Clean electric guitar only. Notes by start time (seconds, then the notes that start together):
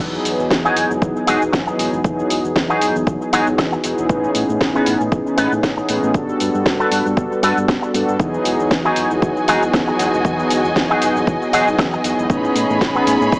0.64 D#4 F#4 G#4
1.16 muted clean electric guitar stroke
1.27 D#4 F#4 G#4
1.52 muted clean electric guitar stroke
1.67 muted clean electric guitar stroke
1.79 muted clean electric guitar stroke
2.69 D#4 F#4 G#4
3.21 muted clean electric guitar stroke
3.33 D#4 F#4 G#4
3.58 muted clean electric guitar stroke
3.72 muted clean electric guitar stroke
3.84 muted clean electric guitar stroke
4.75 B3 C#4 D#4 G#4
5.26 muted clean electric guitar stroke
5.37 B3 C#4 D#4 B4
5.63 muted clean electric guitar stroke
5.77 muted clean electric guitar stroke
5.89 muted clean electric guitar stroke
6.79 B3 F#4 A4
7.31 muted clean electric guitar stroke
7.43 B3 F#4 A4
7.68 muted clean electric guitar stroke
7.82 muted clean electric guitar stroke
7.94 muted clean electric guitar stroke
8.85 D#4 F#4 G#4
9.37 muted clean electric guitar stroke
9.48 D#4 F#4 G#4
9.74 muted clean electric guitar stroke
9.87 muted clean electric guitar stroke
9.99 muted clean electric guitar stroke
10.90 D#4 F#4 G#4
11.42 muted clean electric guitar stroke
11.53 D#4 F#4 G#4
11.79 muted clean electric guitar stroke
11.93 muted clean electric guitar stroke
12.05 muted clean electric guitar stroke
12.95 B3 C#4 D#4 G#4